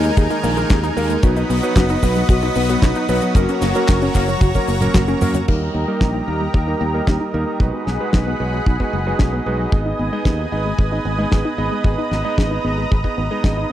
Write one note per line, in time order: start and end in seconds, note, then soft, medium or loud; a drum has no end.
0.00 1.21 D#3 medium
0.00 0.16 G#3 medium
0.00 1.19 D#4 medium
0.00 1.21 A#4 medium
0.00 1.19 G#5 medium
0.00 closed hi-hat medium
0.00 cabasa medium
0.17 0.27 D#2 loud
0.17 0.30 G#4 medium
0.17 kick loud
0.17 closed hi-hat medium
0.17 cabasa medium
0.30 0.48 G#3 medium
0.30 0.48 A#3 medium
0.30 0.48 D#4 medium
0.30 0.43 D#4 medium
0.30 0.48 A#4 medium
0.30 closed hi-hat medium
0.30 cabasa soft
0.44 0.63 A#1 medium
0.44 0.52 A#3 medium
0.44 open hi-hat loud
0.44 cabasa medium
0.57 0.93 G#3 medium
0.57 0.66 G#3 medium
0.57 0.93 A#3 medium
0.57 0.94 D#4 medium
0.57 0.93 A#4 loud
0.57 closed hi-hat medium
0.57 cabasa medium
0.70 0.89 D#2 loud
0.70 0.79 G#4 medium
0.70 kick loud
0.70 snare loud
0.70 clap medium
0.70 closed hi-hat loud
0.70 cabasa medium
0.83 0.96 D#4 loud
0.83 closed hi-hat medium
0.83 cabasa soft
0.97 1.16 D#2 medium
0.97 1.20 G#3 loud
0.97 1.20 A#3 medium
0.97 1.05 A#3 medium
0.97 1.20 D#4 medium
0.97 1.20 A#4 loud
0.97 open hi-hat loud
0.97 cabasa medium
1.10 1.23 G#3 medium
1.10 closed hi-hat medium
1.10 cabasa soft
1.23 1.42 B1 loud
1.23 1.60 F#3 medium
1.23 3.33 B3 medium
1.23 1.60 B3 medium
1.23 1.60 D#4 medium
1.23 1.36 F#4 medium
1.23 5.44 F#4 medium
1.23 1.60 B4 loud
1.23 3.33 D#5 medium
1.23 3.33 B5 loud
1.23 kick loud
1.23 closed hi-hat medium
1.23 cabasa medium
1.36 1.49 D#4 medium
1.36 closed hi-hat medium
1.36 cabasa soft
1.50 1.59 B1 medium
1.50 1.59 B3 medium
1.50 open hi-hat loud
1.50 cabasa medium
1.63 2.00 F#3 loud
1.63 1.72 F#3 medium
1.63 2.00 B3 medium
1.63 2.00 D#4 medium
1.63 2.00 B4 loud
1.63 closed hi-hat medium
1.63 cabasa medium
1.76 1.95 F#1 medium
1.76 1.85 F#4 medium
1.76 kick loud
1.76 snare loud
1.76 clap medium
1.76 closed hi-hat loud
1.76 cabasa medium
1.89 2.02 D#4 loud
1.89 closed hi-hat medium
1.89 cabasa soft
2.03 2.22 B1 medium
2.03 2.20 F#3 medium
2.03 2.20 B3 medium
2.03 2.12 B3 medium
2.03 2.20 D#4 medium
2.03 2.20 B4 loud
2.03 kick medium
2.03 open hi-hat loud
2.03 cabasa medium
2.15 2.29 F#3 medium
2.15 closed hi-hat medium
2.15 cabasa soft
2.29 2.48 B1 loud
2.29 2.42 F#4 medium
2.29 kick loud
2.29 closed hi-hat loud
2.29 cabasa medium
2.42 2.60 F#3 medium
2.42 2.60 B3 medium
2.42 2.60 D#4 medium
2.42 2.55 D#4 medium
2.42 2.60 B4 medium
2.42 closed hi-hat medium
2.42 cabasa soft
2.55 2.75 B1 loud
2.55 2.65 B3 medium
2.55 open hi-hat loud
2.55 cabasa medium
2.69 3.06 F#3 loud
2.69 2.78 F#3 medium
2.69 3.06 B3 medium
2.69 3.06 D#4 medium
2.69 3.06 B4 loud
2.69 closed hi-hat medium
2.69 cabasa soft
2.82 2.92 B1 medium
2.82 2.91 F#4 medium
2.82 kick loud
2.82 snare loud
2.82 clap medium
2.82 closed hi-hat loud
2.82 cabasa medium
2.95 3.09 D#4 loud
2.95 closed hi-hat medium
2.95 cabasa soft
3.09 3.18 B1 loud
3.09 3.32 F#3 loud
3.09 3.32 B3 medium
3.09 3.18 B3 medium
3.09 3.32 D#4 medium
3.09 3.32 B4 loud
3.09 open hi-hat loud
3.09 cabasa medium
3.22 3.35 F#3 medium
3.22 closed hi-hat medium
3.22 cabasa medium
3.35 3.45 F#1 medium
3.35 5.46 F#3 medium
3.35 3.72 F#3 medium
3.35 3.72 A#3 medium
3.35 3.72 C#4 medium
3.35 3.48 F#4 medium
3.35 3.72 A#4 medium
3.35 5.46 C#5 medium
3.35 5.46 A#5 loud
3.35 kick loud
3.35 closed hi-hat loud
3.35 cabasa medium
3.48 3.62 C#4 medium
3.48 closed hi-hat medium
3.48 cabasa soft
3.61 3.71 F#1 loud
3.61 3.71 A#3 medium
3.61 snare medium
3.61 open hi-hat loud
3.61 cabasa medium
3.75 3.84 F#3 medium
3.75 4.12 F#3 loud
3.75 4.12 A#3 medium
3.75 4.12 C#4 medium
3.75 4.12 A#4 loud
3.75 closed hi-hat medium
3.75 cabasa soft
3.88 4.08 F#1 medium
3.88 3.97 F#4 medium
3.88 kick loud
3.88 snare loud
3.88 clap medium
3.88 closed hi-hat loud
3.88 cabasa medium
4.02 4.15 C#4 loud
4.02 open hi-hat medium
4.02 cabasa soft
4.14 4.34 F#1 medium
4.14 4.33 F#3 medium
4.14 4.33 A#3 medium
4.14 4.24 A#3 medium
4.14 4.33 C#4 medium
4.14 4.33 A#4 medium
4.14 kick medium
4.14 clap medium
4.14 open hi-hat loud
4.14 cabasa medium
4.28 4.41 F#3 medium
4.28 closed hi-hat medium
4.28 cabasa soft
4.41 4.51 F#1 loud
4.41 4.54 F#4 medium
4.41 kick loud
4.41 closed hi-hat loud
4.41 high tom medium
4.41 cabasa medium
4.54 4.73 F#3 medium
4.54 4.73 A#3 medium
4.54 4.68 C#4 medium
4.54 4.73 C#4 medium
4.54 4.73 A#4 medium
4.54 kick medium
4.54 closed hi-hat medium
4.54 high tom medium
4.54 cabasa soft
4.67 4.87 F#1 medium
4.67 4.77 A#3 medium
4.67 open hi-hat loud
4.67 cabasa medium
4.81 4.90 F#3 medium
4.81 5.04 F#3 medium
4.81 5.04 A#3 medium
4.81 5.04 C#4 medium
4.81 5.04 A#4 loud
4.81 closed hi-hat medium
4.81 mid tom medium
4.81 cabasa soft
4.94 5.14 F#1 medium
4.94 5.04 F#4 medium
4.94 kick loud
4.94 snare loud
4.94 clap medium
4.94 closed hi-hat loud
4.94 mid tom medium
4.94 cabasa medium
5.08 5.18 F#3 medium
5.08 5.18 A#3 medium
5.08 5.21 C#4 loud
5.08 5.18 C#4 medium
5.08 5.18 A#4 loud
5.08 closed hi-hat medium
5.08 cabasa soft
5.21 5.40 F#2 medium
5.21 5.45 F#3 loud
5.21 5.30 A#3 medium
5.21 5.45 A#3 medium
5.21 5.45 C#4 medium
5.21 5.45 A#4 loud
5.21 mid tom loud
5.21 open hi-hat loud
5.21 cabasa medium
5.34 5.47 F#3 medium
5.34 closed hi-hat medium
5.34 mid tom medium
5.34 cabasa medium
5.48 5.67 D#2 medium
5.48 5.85 G3 medium
5.48 5.85 A#3 medium
5.48 5.85 D#4 medium
5.48 5.61 G4 medium
5.48 7.58 G4 medium
5.48 5.85 A#4 medium
5.48 7.58 A#4 medium
5.48 13.72 D#5 medium
5.48 7.58 A#5 medium
5.48 kick loud
5.48 crash medium
5.61 5.74 D#4 medium
5.74 5.84 D#2 medium
5.74 5.83 A#3 medium
5.88 6.25 G3 medium
5.88 5.97 G3 medium
5.88 6.25 A#3 medium
5.88 6.25 D#4 medium
5.88 6.24 A#4 loud
6.01 6.20 A#1 medium
6.01 6.10 G4 medium
6.01 kick loud
6.01 snare loud
6.14 6.27 D#4 loud
6.28 6.47 D#2 medium
6.28 6.45 G3 medium
6.28 6.36 A#3 medium
6.28 6.45 A#3 medium
6.28 6.45 D#4 medium
6.28 6.45 A#4 medium
6.41 6.54 G3 medium
6.54 6.73 D#2 medium
6.54 6.67 G4 medium
6.54 kick loud
6.67 6.85 G3 medium
6.67 6.85 A#3 medium
6.67 6.80 D#4 medium
6.67 6.85 D#4 medium
6.67 6.85 A#4 medium
6.81 7.00 D#2 loud
6.81 6.89 A#3 medium
6.94 7.03 G3 medium
6.94 7.31 G3 medium
6.94 7.31 A#3 medium
6.94 7.31 D#4 medium
6.94 7.31 A#4 loud
7.07 7.17 D#2 medium
7.07 7.16 G4 medium
7.07 kick loud
7.07 snare loud
7.21 7.33 D#4 loud
7.34 7.43 D#2 medium
7.34 7.57 G3 medium
7.34 7.57 A#3 medium
7.34 7.43 A#3 medium
7.34 7.57 D#4 medium
7.34 7.57 A#4 loud
7.47 7.60 G3 medium
7.60 7.70 B1 medium
7.60 7.97 G#3 medium
7.60 7.73 D#4 medium
7.60 7.97 D#4 medium
7.60 7.97 F#4 medium
7.60 9.70 G#4 medium
7.60 7.97 B4 medium
7.60 9.70 F#5 medium
7.60 9.70 B5 medium
7.60 kick loud
7.74 7.86 B3 medium
7.87 7.96 B1 medium
7.87 7.96 G#3 medium
7.87 snare medium
8.00 8.09 F#3 medium
8.00 8.37 G#3 medium
8.00 8.37 D#4 medium
8.00 8.37 F#4 medium
8.00 8.37 B4 loud
8.13 8.33 B1 medium
8.13 8.22 D#4 medium
8.13 kick loud
8.13 snare loud
8.27 8.39 B3 loud
8.40 8.59 B1 medium
8.40 8.49 G#3 medium
8.40 8.58 G#3 medium
8.40 8.58 D#4 medium
8.40 8.58 F#4 medium
8.40 8.58 B4 medium
8.53 8.66 F#3 medium
8.66 8.76 B1 loud
8.66 8.79 D#4 medium
8.66 kick loud
8.80 8.97 G#3 medium
8.80 8.92 B3 medium
8.80 8.97 D#4 medium
8.80 8.97 F#4 medium
8.80 8.97 B4 medium
8.80 kick medium
8.93 9.12 F#1 medium
8.93 9.02 G#3 medium
9.06 9.15 F#3 medium
9.06 9.43 G#3 medium
9.06 9.43 D#4 medium
9.06 9.43 F#4 medium
9.06 9.43 B4 loud
9.19 9.39 B1 loud
9.19 9.28 D#4 medium
9.19 kick loud
9.19 snare loud
9.33 9.46 B3 loud
9.46 9.65 B1 medium
9.46 9.55 G#3 medium
9.46 9.70 G#3 medium
9.46 9.70 D#4 medium
9.46 9.70 F#4 medium
9.46 9.70 B4 loud
9.59 9.72 F#3 medium
9.72 9.92 G#1 loud
9.72 10.09 B3 medium
9.72 10.09 D#4 medium
9.72 9.85 G#4 medium
9.72 10.09 G#4 medium
9.72 13.72 B4 medium
9.72 10.09 D#5 medium
9.72 11.83 G#5 medium
9.72 13.72 D#6 medium
9.72 kick loud
9.86 9.99 D#4 medium
9.99 10.09 G#1 medium
9.99 10.08 B3 medium
10.12 10.21 G#3 medium
10.12 10.49 B3 medium
10.12 10.49 D#4 medium
10.12 10.49 G#4 medium
10.12 10.49 D#5 loud
10.25 10.45 D#2 medium
10.25 10.34 G#4 medium
10.25 kick loud
10.25 snare loud
10.39 10.52 D#4 loud
10.52 10.71 G#1 medium
10.52 10.61 B3 medium
10.52 10.70 B3 medium
10.52 10.70 D#4 medium
10.52 10.70 G#4 medium
10.52 10.70 D#5 medium
10.65 10.78 G#3 medium
10.79 10.98 G#1 loud
10.79 10.91 G#4 medium
10.79 kick loud
10.92 11.10 B3 medium
10.92 11.05 D#4 medium
10.92 11.10 D#4 medium
10.92 11.10 G#4 medium
10.92 11.10 D#5 medium
11.05 11.24 G#1 loud
11.05 11.14 B3 medium
11.19 11.27 G#3 medium
11.19 11.55 B3 medium
11.19 11.55 D#4 medium
11.19 11.55 G#4 medium
11.19 11.55 D#5 loud
11.32 11.42 G#1 medium
11.32 11.41 G#4 medium
11.32 kick loud
11.32 snare loud
11.45 11.58 D#4 loud
11.58 11.68 G#1 loud
11.58 11.82 B3 medium
11.58 11.67 B3 medium
11.58 11.82 D#4 medium
11.58 11.82 G#4 medium
11.58 11.82 D#5 loud
11.72 11.84 G#3 medium
11.84 11.94 G#1 medium
11.84 12.22 B3 medium
11.84 12.22 D#4 medium
11.84 12.22 G#4 medium
11.84 11.98 G#4 medium
11.84 12.22 D#5 medium
11.84 13.72 A#5 medium
11.84 kick loud
11.98 12.11 D#4 medium
12.11 12.21 G#1 loud
12.11 12.20 B3 medium
12.11 snare medium
12.25 12.34 G#3 medium
12.25 12.61 B3 medium
12.25 12.61 D#4 medium
12.25 12.61 G#4 medium
12.25 12.61 D#5 loud
12.38 12.57 G#1 medium
12.38 12.47 G#4 medium
12.38 kick loud
12.38 snare loud
12.51 12.64 D#4 loud
12.64 12.84 G#1 medium
12.64 12.73 B3 medium
12.64 12.82 B3 medium
12.64 12.82 D#4 medium
12.64 12.82 G#4 medium
12.64 12.82 D#5 medium
12.78 12.91 G#3 medium
12.91 13.01 G#1 loud
12.91 13.04 G#4 medium
12.91 kick loud
13.04 13.22 B3 medium
13.04 13.17 D#4 medium
13.04 13.22 D#4 medium
13.04 13.22 G#4 medium
13.04 13.22 D#5 medium
13.04 kick medium
13.17 13.27 G#1 medium
13.17 13.26 B3 medium
13.31 13.40 G#3 medium
13.31 13.68 B3 medium
13.31 13.68 D#4 medium
13.31 13.68 G#4 medium
13.31 13.68 D#5 loud
13.44 13.63 G#1 loud
13.44 13.53 G#4 medium
13.44 kick loud
13.44 snare loud
13.57 13.70 D#4 loud